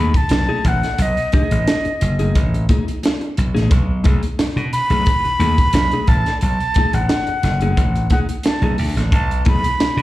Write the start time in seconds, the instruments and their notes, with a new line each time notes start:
Already playing: slap bass D#2, clean electric guitar A3 D#4 G#4, flute B5
0.14 flute A5, muted clean electric guitar stroke, kick, closed hi-hat
0.29 slap bass B1, muted clean electric guitar stroke, snare, closed hi-hat
0.49 clean electric guitar A3 D#4 G#4
0.65 slap bass A1, flute F#5, muted clean electric guitar stroke, kick, closed hi-hat
0.83 muted clean electric guitar stroke, snare, closed hi-hat
0.98 slap bass B1, flute D#5, closed hi-hat
1.17 closed hi-hat
1.32 clean electric guitar A3 D#4 G#4, flute D#5, kick, closed hi-hat
1.51 slap bass A1, closed hi-hat
1.67 muted clean electric guitar stroke, snare, closed hi-hat
1.85 muted clean electric guitar stroke, muted slap bass stroke, closed hi-hat
2.01 slap bass F#1, closed hi-hat
2.19 clean electric guitar A3 D#4 G#4, closed hi-hat
2.35 slap bass A1, kick, closed hi-hat
2.53 muted clean electric guitar stroke, closed hi-hat
2.69 clean electric guitar A3 D#4 G#4, kick, closed hi-hat
2.87 muted clean electric guitar stroke, closed hi-hat
3.03 muted clean electric guitar stroke, snare, closed hi-hat
3.21 muted clean electric guitar stroke, closed hi-hat
3.37 slap bass B1, closed hi-hat
3.55 slap bass A1, clean electric guitar A3 D#4 G#4, snare, closed hi-hat
3.71 slap bass B1, kick, closed hi-hat
4.04 slap bass B1, clean electric guitar A3 D#4 G#4, kick, closed hi-hat
4.23 closed hi-hat
4.38 muted clean electric guitar stroke, muted slap bass stroke, snare, closed hi-hat
4.56 slap bass B2, muted clean electric guitar stroke, closed hi-hat
4.73 flute B5, closed hi-hat
4.90 slap bass B1, clean electric guitar A3 D#4 G#4, closed hi-hat
5.06 kick, closed hi-hat
5.24 muted slap bass stroke, muted clean electric guitar stroke, closed hi-hat
5.39 slap bass D#2, clean electric guitar A3 D#4 G#4, closed hi-hat
5.58 muted clean electric guitar stroke, kick, closed hi-hat
5.73 slap bass B1, muted clean electric guitar stroke, snare, closed hi-hat
5.91 clean electric guitar A3 D#4 G#4, closed hi-hat
6.07 slap bass A1, flute A5, muted clean electric guitar stroke, kick, closed hi-hat
6.26 muted clean electric guitar stroke, snare, closed hi-hat
6.41 slap bass B1, flute A5, closed hi-hat
6.60 closed hi-hat
6.74 clean electric guitar A3 D#4 G#4, kick, closed hi-hat
6.93 slap bass A1, flute F#5, closed hi-hat
7.09 muted clean electric guitar stroke, snare, closed hi-hat
7.27 muted slap bass stroke, muted clean electric guitar stroke, closed hi-hat
7.43 slap bass F#1, snare, closed hi-hat
7.61 clean electric guitar A3 D#4 G#4, closed hi-hat
7.77 slap bass A1, kick, closed hi-hat
7.96 muted clean electric guitar stroke, closed hi-hat
8.10 clean electric guitar A3 D#4 G#4, flute F#5, kick, closed hi-hat
8.29 muted clean electric guitar stroke, closed hi-hat
8.43 flute A5, muted clean electric guitar stroke, snare, closed hi-hat
8.62 slap bass B1, clean electric guitar A3 D#4 G#4, closed hi-hat
8.78 slap bass D2, muted clean electric guitar stroke, open hi-hat
8.96 slap bass A1, muted clean electric guitar stroke, snare, closed hi-hat
9.12 slap bass B1, flute A5, kick, closed hi-hat
9.31 closed hi-hat
9.45 slap bass B1, clean electric guitar A3 D#4 G#4, flute B5, kick, closed hi-hat
9.64 closed hi-hat
9.80 muted clean electric guitar stroke, muted slap bass stroke, snare, closed hi-hat
9.97 slap bass B2, muted clean electric guitar stroke, closed hi-hat